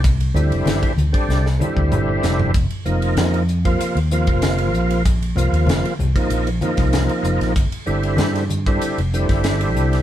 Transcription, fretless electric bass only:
\new Staff \with { instrumentName = "Fretless electric bass" } { \clef bass \time 4/4 \key g \phrygian \tempo 4 = 96 c,8 d,16 f,,16 g,,16 r16 d,16 r16 c,8 r16 d,16 g,,8 f,,8 | f,,16 r16 f,,8 f,4 r16 ees,8 f,,8. bes,,8~ | bes,,8 c,16 ees,16 f,,16 r16 c,16 r16 bes,,8 r16 c,8 r16 f,,16 bes,,16 | g,,16 r16 g,,8 g,4 r16 f,,8 g,,8. c,8 | }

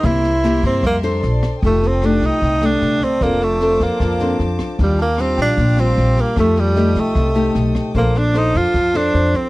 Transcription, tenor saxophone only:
\new Staff \with { instrumentName = "Tenor saxophone" } { \time 4/4 \key bes \major \tempo 4 = 152 e'4. c'8 bes8 r4. | a8 c'8 d'8 ees'4 d'4 c'8 | bes8 a4 bes4. r4 | g8 bes8 c'8 d'4 c'4 bes8 |
a8 g4 a4. r4 | bes8 d'8 ees'8 f'4 d'4 c'8 | }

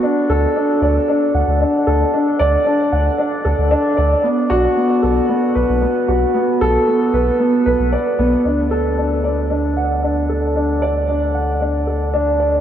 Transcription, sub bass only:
\new Staff \with { instrumentName = "Sub bass" } { \clef bass \time 4/4 \key b \minor \tempo 4 = 114 r8 d,16 r8. d,16 r8. d,16 d,16 r8 d,16 r16 | r8 d,16 r8. d,16 r8. d,16 d,16 r8 d,16 r16 | r8 b,,16 r8. b,,16 r8. b,,16 b,,16 r8 b,,16 r16 | r8 b,,16 r8. b,,16 r8. b,,16 b,,16 r8 b,,16 r16 |
d,1~ | d,1 | }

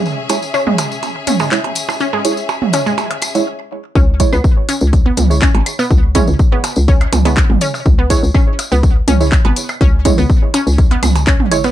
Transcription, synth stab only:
\new Staff \with { instrumentName = "Synth stab" } { \time 4/4 \key cis \minor \tempo 4 = 123 r8 <gis e' cis''>16 r2 r16 <gis e' cis''>16 r8. | r8 <gis e' cis''>16 r2 <gis e' cis''>16 r4 | r8 <gis e' cis''>16 r2 <gis e' cis''>16 r4 | r8 <gis e' cis''>16 r2 <gis e' cis''>16 r4 |
r8 <gis e' cis''>16 r2 <gis e' cis''>16 r4 | r8 <gis e' cis''>16 r2 r8. <gis e' cis''>16 r16 | }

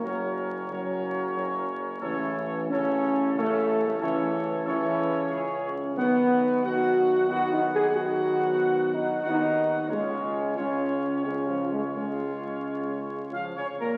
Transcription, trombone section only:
\new Staff \with { instrumentName = "Trombone section" } { \clef bass \time 3/4 \key cis \mixolydian \tempo 4 = 91 <cis cis'>4 <cis cis'>2 | <cis cis'>4 <cis cis'>4 <cis cis'>4 | <cis cis'>4 <cis cis'>2 | <dis b>4 <dis b>4 <dis b>4 |
<dis b>2 <dis b>4 | <cis cis'>4 <cis cis'>4 <cis cis'>4 | <cis cis'>2 \tuplet 3/2 { eis8 cis8 ais,8 } | }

